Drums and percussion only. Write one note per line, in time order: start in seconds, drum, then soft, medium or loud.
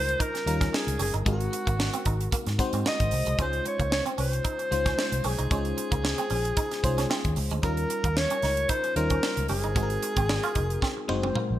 0.09 closed hi-hat medium
0.20 kick medium
0.20 closed hi-hat loud
0.35 snare soft
0.35 closed hi-hat soft
0.47 closed hi-hat medium
0.61 kick medium
0.61 snare soft
0.61 closed hi-hat medium
0.74 snare loud
0.88 closed hi-hat medium
0.99 open hi-hat medium
1.14 closed hi-hat soft
1.26 kick loud
1.26 closed hi-hat medium
1.40 closed hi-hat soft
1.53 closed hi-hat medium
1.67 kick medium
1.67 closed hi-hat soft
1.80 snare loud
1.93 closed hi-hat medium
2.05 kick medium
2.05 closed hi-hat medium
2.21 closed hi-hat soft
2.32 kick medium
2.32 closed hi-hat loud
2.47 snare soft
2.47 closed hi-hat soft
2.59 kick medium
2.59 closed hi-hat medium
2.73 closed hi-hat medium
2.86 snare loud
3.00 kick medium
3.00 closed hi-hat medium
3.11 open hi-hat medium
3.26 closed hi-hat soft
3.39 kick loud
3.39 closed hi-hat medium
3.53 closed hi-hat soft
3.65 closed hi-hat medium
3.80 kick medium
3.80 closed hi-hat soft
3.92 snare loud
4.06 closed hi-hat soft
4.18 open hi-hat medium
4.33 closed hi-hat soft
4.45 kick medium
4.45 closed hi-hat loud
4.59 closed hi-hat soft
4.72 closed hi-hat medium
4.86 kick medium
4.86 snare soft
4.86 closed hi-hat soft
4.99 snare loud
5.12 closed hi-hat medium
5.24 open hi-hat medium
5.39 closed hi-hat soft
5.51 kick loud
5.51 closed hi-hat medium
5.65 closed hi-hat soft
5.78 closed hi-hat medium
5.92 kick medium
5.92 closed hi-hat medium
6.05 snare loud
6.18 closed hi-hat soft
6.30 open hi-hat medium
6.45 closed hi-hat medium
6.57 kick medium
6.57 closed hi-hat loud
6.71 snare soft
6.71 closed hi-hat soft
6.84 kick medium
6.84 closed hi-hat medium
6.98 snare soft
6.98 closed hi-hat medium
7.11 snare loud
7.25 kick medium
7.25 closed hi-hat medium
7.36 open hi-hat medium
7.51 closed hi-hat soft
7.63 kick loud
7.63 closed hi-hat medium
7.77 closed hi-hat soft
7.90 closed hi-hat medium
8.04 kick medium
8.04 closed hi-hat medium
8.17 snare loud
8.30 closed hi-hat medium
8.42 snare soft
8.42 open hi-hat medium
8.57 closed hi-hat medium
8.69 kick medium
8.69 closed hi-hat loud
8.84 closed hi-hat soft
8.96 closed hi-hat medium
9.10 kick medium
9.10 closed hi-hat medium
9.23 snare loud
9.37 closed hi-hat medium
9.49 open hi-hat medium
9.63 closed hi-hat soft
9.76 kick loud
9.76 closed hi-hat medium
9.90 closed hi-hat soft
10.03 closed hi-hat medium
10.16 kick medium
10.16 closed hi-hat soft
10.29 snare loud
10.43 closed hi-hat medium
10.55 kick medium
10.55 closed hi-hat medium
10.70 closed hi-hat soft
10.82 kick medium
10.82 snare medium
11.09 high tom medium
11.23 high tom medium
11.35 mid tom medium